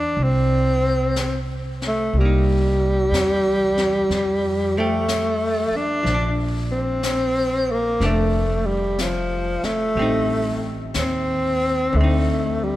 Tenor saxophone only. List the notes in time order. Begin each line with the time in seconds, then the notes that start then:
Already playing: D4
0.24 C4
1.87 A3
2.19 G3
4.79 A3
5.76 D4
6.72 C4
7.71 A#3
8.05 A3
8.66 G3
9.01 F3
9.65 A3
10.97 C4
11.96 A3
12.64 G3